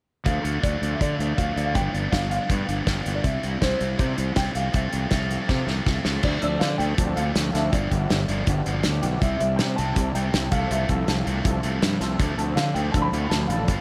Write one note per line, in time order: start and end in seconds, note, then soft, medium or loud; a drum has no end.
0.24 0.38 D2 medium
0.24 0.60 D3 medium
0.24 0.44 F3 medium
0.24 0.42 A3 medium
0.24 0.42 D4 medium
0.24 0.64 F5 medium
0.24 kick medium
0.24 closed hi-hat medium
0.43 0.57 D2 medium
0.43 0.62 F3 soft
0.43 0.61 A3 medium
0.43 0.63 D4 medium
0.43 closed hi-hat soft
0.61 0.76 D2 medium
0.61 0.97 D3 medium
0.61 0.98 F3 medium
0.61 0.99 A3 medium
0.61 0.99 D4 medium
0.61 0.91 D5 medium
0.61 kick medium
0.61 closed hi-hat medium
0.82 0.94 D2 medium
0.82 closed hi-hat soft
0.93 1.00 E5 soft
0.99 1.35 D3 medium
0.99 1.13 D3 medium
0.99 1.19 F3 medium
0.99 1.18 A3 medium
0.99 1.17 D4 medium
0.99 1.36 D5 medium
0.99 kick loud
0.99 closed hi-hat medium
1.18 1.32 D2 medium
1.18 1.36 F3 soft
1.18 1.37 A3 soft
1.18 1.37 D4 soft
1.18 closed hi-hat soft
1.36 1.51 D2 medium
1.36 1.73 D3 medium
1.36 1.57 F3 medium
1.36 1.55 A3 medium
1.36 1.55 D4 medium
1.36 1.63 F5 medium
1.36 kick medium
1.36 closed hi-hat medium
1.56 1.77 D2 medium
1.56 1.74 F3 medium
1.56 1.74 A3 soft
1.56 1.74 D4 medium
1.56 closed hi-hat medium
1.65 1.74 F5 medium
1.74 1.88 G1 medium
1.74 2.12 G2 medium
1.74 2.10 D3 medium
1.74 1.94 F3 medium
1.74 1.93 B3 medium
1.74 1.91 D4 medium
1.74 2.14 G5 medium
1.74 kick medium
1.74 closed hi-hat medium
1.92 2.07 G1 medium
1.92 2.11 F3 soft
1.92 2.11 B3 medium
1.92 2.12 D4 medium
1.92 closed hi-hat soft
2.12 2.37 G1 medium
2.12 2.49 D3 medium
2.12 2.49 F3 medium
2.12 2.50 B3 medium
2.12 2.50 D4 medium
2.12 2.29 F5 medium
2.12 kick medium
2.12 snare medium
2.12 closed hi-hat medium
2.30 3.01 F5 medium
2.30 closed hi-hat soft
2.50 2.62 G2 medium
2.50 2.87 G2 medium
2.50 2.86 D3 medium
2.50 2.70 F3 medium
2.50 2.69 B3 medium
2.50 2.67 D4 medium
2.50 kick medium
2.50 closed hi-hat medium
2.69 2.81 G1 medium
2.69 2.87 F3 soft
2.69 2.87 B3 soft
2.69 2.88 D4 medium
2.69 closed hi-hat soft
2.87 2.99 G1 medium
2.87 3.23 D3 medium
2.87 3.06 F3 medium
2.87 3.06 B3 medium
2.87 3.05 D4 medium
2.87 kick medium
2.87 snare medium
2.87 closed hi-hat medium
3.06 3.19 G1 medium
3.06 3.24 F3 soft
3.06 3.24 B3 medium
3.06 3.23 D4 medium
3.06 closed hi-hat soft
3.15 3.23 D5 medium
3.23 3.37 C2 medium
3.23 3.62 C3 medium
3.23 3.44 G3 medium
3.23 3.44 C4 medium
3.23 3.43 E4 medium
3.23 3.62 E5 medium
3.23 kick medium
3.23 closed hi-hat medium
3.43 3.56 C2 medium
3.43 3.62 G3 medium
3.43 3.63 C4 medium
3.43 3.63 E4 medium
3.43 closed hi-hat soft
3.61 3.74 C2 medium
3.61 3.98 C3 medium
3.61 3.99 G3 medium
3.61 4.00 C4 medium
3.61 4.00 E4 medium
3.61 3.97 C5 medium
3.61 kick medium
3.61 snare medium
3.61 closed hi-hat medium
3.81 3.93 C2 medium
3.81 closed hi-hat soft
3.99 4.36 C3 medium
3.99 4.12 C3 medium
3.99 4.18 G3 medium
3.99 4.18 C4 medium
3.99 4.16 E4 medium
3.99 4.38 C5 medium
3.99 kick loud
3.99 closed hi-hat medium
4.17 4.31 C2 medium
4.17 4.37 G3 soft
4.17 4.38 C4 medium
4.17 4.38 E4 medium
4.17 closed hi-hat medium
4.36 4.49 C2 medium
4.36 4.55 C3 medium
4.36 4.55 G3 medium
4.36 4.56 C4 medium
4.36 4.56 E4 medium
4.36 4.56 G5 medium
4.36 kick medium
4.36 snare loud
4.36 closed hi-hat medium
4.55 4.68 C2 medium
4.55 4.73 C3 medium
4.55 4.74 F3 medium
4.55 4.74 C4 medium
4.55 4.75 F4 medium
4.55 4.75 A4 medium
4.55 4.73 F5 medium
4.55 closed hi-hat medium
4.73 4.87 C2 medium
4.73 5.12 C3 medium
4.73 5.10 F3 medium
4.73 4.94 C4 medium
4.73 4.93 F4 medium
4.73 4.92 A4 medium
4.73 5.82 E5 medium
4.73 kick medium
4.73 closed hi-hat medium
4.93 5.06 C2 medium
4.93 5.11 C4 medium
4.93 5.12 F4 medium
4.93 5.13 A4 medium
4.93 closed hi-hat medium
5.11 5.36 C2 medium
5.11 5.47 F3 medium
5.11 5.48 C4 medium
5.11 5.48 F4 medium
5.11 5.49 A4 medium
5.11 kick medium
5.11 snare medium
5.11 closed hi-hat medium
5.31 closed hi-hat soft
5.48 5.86 C3 medium
5.48 5.61 C3 medium
5.48 5.84 F3 medium
5.48 5.68 C4 medium
5.48 5.67 F4 medium
5.48 5.66 A4 medium
5.48 kick medium
5.48 snare soft
5.67 5.79 C2 medium
5.67 5.85 C4 soft
5.67 5.86 F4 soft
5.67 5.86 A4 medium
5.67 snare soft
5.85 5.99 C2 medium
5.85 6.22 F3 medium
5.85 6.06 C4 medium
5.85 6.05 F4 medium
5.85 6.03 A4 medium
5.85 kick medium
5.85 snare medium
6.04 6.17 C#2 medium
6.04 6.23 C4 medium
6.04 6.23 F4 medium
6.04 6.22 A4 medium
6.04 snare medium
6.23 6.38 D2 medium
6.23 6.40 D3 medium
6.23 6.41 F3 medium
6.23 6.41 A3 medium
6.23 6.42 D5 medium
6.23 kick medium
6.23 crash medium
6.41 6.57 D2 medium
6.41 6.58 D3 medium
6.41 6.59 F3 medium
6.41 6.67 F3 medium
6.41 6.67 C4 medium
6.41 6.66 D4 medium
6.41 6.66 A4 medium
6.41 6.62 D5 medium
6.41 closed hi-hat soft
6.59 6.77 D3 medium
6.59 6.75 D3 medium
6.59 6.77 F3 medium
6.59 6.79 F5 medium
6.59 snare medium
6.59 closed hi-hat medium
6.78 6.94 D2 medium
6.78 6.96 D3 medium
6.78 6.96 F3 medium
6.78 6.97 A3 medium
6.78 7.17 G5 medium
6.78 closed hi-hat soft
6.97 7.12 D2 medium
6.97 7.14 D3 medium
6.97 7.22 F3 medium
6.97 7.14 F3 medium
6.97 7.22 C4 medium
6.97 7.22 D4 medium
6.97 7.22 A4 medium
6.97 kick loud
6.97 closed hi-hat medium
7.16 7.31 D2 medium
7.16 7.34 D3 medium
7.16 7.34 F3 medium
7.16 7.34 A3 medium
7.16 7.55 F5 medium
7.16 closed hi-hat medium
7.35 7.50 D2 medium
7.35 7.52 D3 medium
7.35 7.52 F3 medium
7.35 snare medium
7.35 closed hi-hat medium
7.53 7.68 D2 medium
7.53 7.70 D3 medium
7.53 7.70 F3 medium
7.53 7.73 F3 medium
7.53 7.73 C4 medium
7.53 7.72 D4 medium
7.53 7.72 A4 loud
7.53 7.73 E5 medium
7.53 snare soft
7.53 closed hi-hat medium
7.72 7.87 G1 medium
7.72 7.90 G2 medium
7.72 7.90 D3 medium
7.72 7.90 F3 medium
7.72 8.99 D5 medium
7.72 kick medium
7.72 closed hi-hat medium
7.91 8.06 G1 medium
7.91 8.08 G2 medium
7.91 8.08 D3 medium
7.91 8.16 F3 medium
7.91 8.16 G3 medium
7.91 8.15 B3 medium
7.91 8.15 G4 medium
7.91 kick medium
7.91 closed hi-hat medium
8.09 8.24 G1 medium
8.09 8.26 G2 medium
8.09 8.27 D3 medium
8.09 snare medium
8.09 closed hi-hat medium
8.28 8.43 G1 medium
8.28 8.46 G2 medium
8.28 8.46 D3 medium
8.28 8.46 F3 medium
8.28 closed hi-hat soft
8.47 8.61 G1 medium
8.47 8.64 G2 medium
8.47 8.64 D3 medium
8.47 8.71 F3 medium
8.47 8.71 G3 medium
8.47 8.72 B3 medium
8.47 8.72 G4 medium
8.47 kick loud
8.47 closed hi-hat medium
8.66 8.80 G1 medium
8.66 8.83 G2 medium
8.66 8.84 D3 medium
8.66 8.84 F3 medium
8.66 closed hi-hat medium
8.83 8.99 D2 medium
8.83 9.01 G2 medium
8.83 9.01 D3 medium
8.83 snare medium
8.83 closed hi-hat medium
9.02 9.17 B1 medium
9.02 9.19 G2 medium
9.02 9.20 D3 medium
9.02 9.21 F3 medium
9.02 9.21 G3 medium
9.02 9.21 B3 medium
9.02 9.21 G4 medium
9.02 closed hi-hat medium
9.20 9.36 C2 medium
9.20 9.39 C3 medium
9.20 9.39 G3 medium
9.20 9.40 C4 medium
9.20 9.36 E5 medium
9.20 kick loud
9.20 closed hi-hat medium
9.37 9.55 C2 medium
9.37 9.57 C3 medium
9.37 9.65 G3 medium
9.37 9.57 G3 medium
9.37 9.65 C4 medium
9.37 9.64 E4 medium
9.37 9.64 G4 medium
9.37 9.58 E5 medium
9.37 closed hi-hat medium
9.56 9.76 C3 medium
9.56 9.77 G5 medium
9.56 snare medium
9.56 closed hi-hat medium
9.60 9.74 C3 medium
9.60 9.76 G3 medium
9.76 9.92 C2 medium
9.76 9.95 C3 medium
9.76 9.96 G3 medium
9.76 9.96 C4 loud
9.76 10.15 A5 medium
9.76 closed hi-hat soft
9.96 10.11 C2 medium
9.96 10.13 C3 medium
9.96 10.20 G3 medium
9.96 10.13 G3 medium
9.96 10.20 C4 medium
9.96 10.21 E4 medium
9.96 10.21 G4 medium
9.96 kick medium
9.96 closed hi-hat medium
10.15 10.29 C2 medium
10.15 10.33 C3 medium
10.15 10.33 G3 medium
10.15 10.33 C4 medium
10.15 10.49 G5 medium
10.15 closed hi-hat medium
10.34 10.48 C2 medium
10.34 10.51 C3 medium
10.34 10.51 G3 medium
10.34 snare loud
10.34 closed hi-hat medium
10.51 10.66 C2 medium
10.51 10.69 C3 medium
10.51 10.70 F3 medium
10.51 10.77 F3 medium
10.51 10.70 A3 loud
10.51 10.77 C4 medium
10.51 10.77 E4 medium
10.51 10.76 A4 medium
10.51 10.71 F5 medium
10.51 kick medium
10.51 closed hi-hat medium
10.70 10.85 C2 medium
10.70 10.88 C3 medium
10.70 10.88 F3 medium
10.70 10.88 A3 medium
10.70 11.97 E5 medium
10.70 closed hi-hat medium
10.89 11.03 C2 medium
10.89 11.06 C3 medium
10.89 11.06 F3 medium
10.89 11.14 F3 medium
10.89 11.14 C4 medium
10.89 11.13 E4 medium
10.89 11.13 A4 medium
10.89 kick medium
10.89 closed hi-hat medium
11.07 11.22 C2 medium
11.07 11.24 C3 medium
11.07 11.24 F3 medium
11.07 snare medium
11.07 closed hi-hat medium
11.25 11.41 C2 medium
11.25 11.43 C3 medium
11.25 11.44 F3 medium
11.25 11.44 A3 medium
11.25 closed hi-hat soft
11.44 11.59 C2 medium
11.44 11.62 C3 medium
11.44 11.69 F3 medium
11.44 11.62 F3 medium
11.44 11.69 C4 medium
11.44 11.69 E4 medium
11.44 11.69 A4 medium
11.44 kick loud
11.44 closed hi-hat medium
11.63 11.78 C2 medium
11.63 11.81 C3 medium
11.63 11.81 F3 medium
11.63 11.81 A3 medium
11.63 closed hi-hat medium
11.82 11.97 G2 medium
11.82 11.99 C3 medium
11.82 11.99 F3 medium
11.82 snare loud
11.82 closed hi-hat medium
12.01 12.15 C2 medium
12.01 12.18 C3 medium
12.01 12.18 F3 medium
12.01 12.20 F3 medium
12.01 12.20 C4 medium
12.01 12.20 E4 medium
12.01 12.19 A4 medium
12.01 snare soft
12.01 closed hi-hat medium
12.19 12.34 D2 medium
12.19 12.37 D3 medium
12.19 12.37 F3 medium
12.19 12.37 A3 medium
12.19 kick loud
12.19 closed hi-hat medium
12.38 12.52 D2 medium
12.38 12.55 D3 medium
12.38 12.55 F3 medium
12.38 12.63 F3 medium
12.38 12.63 C4 medium
12.38 12.63 D4 medium
12.38 12.62 A4 medium
12.38 closed hi-hat medium
12.55 12.70 D3 medium
12.55 12.74 D3 medium
12.55 12.74 F3 medium
12.55 12.75 F5 medium
12.55 snare medium
12.55 closed hi-hat medium
12.74 12.89 D2 medium
12.74 12.93 D3 medium
12.74 12.93 F3 medium
12.74 12.93 A3 loud
12.74 12.94 G5 medium
12.74 closed hi-hat soft
12.91 13.08 D2 medium
12.91 13.11 D3 medium
12.91 13.18 F3 medium
12.91 13.11 F3 medium
12.91 13.18 C4 medium
12.91 13.19 D4 medium
12.91 13.19 A4 medium
12.91 13.02 A5 medium
12.91 kick loud
12.91 closed hi-hat medium
13.02 13.31 B5 loud
13.12 13.26 D2 medium
13.12 13.30 D3 medium
13.12 13.31 F3 medium
13.12 13.31 A3 medium
13.12 closed hi-hat medium
13.29 13.45 D2 medium
13.29 13.49 D3 medium
13.29 13.49 F3 medium
13.29 13.49 A5 medium
13.29 snare medium
13.29 closed hi-hat medium
13.47 13.63 A1 medium
13.47 13.69 F3 medium
13.47 13.69 C4 medium
13.47 13.69 D4 medium
13.47 13.68 A4 loud
13.47 13.81 F5 medium
13.47 closed hi-hat medium
13.52 13.68 D3 medium
13.52 13.68 F3 medium
13.68 13.81 G1 medium
13.68 13.81 G2 medium
13.68 13.81 D3 medium
13.68 13.81 F3 medium
13.68 kick medium
13.68 closed hi-hat medium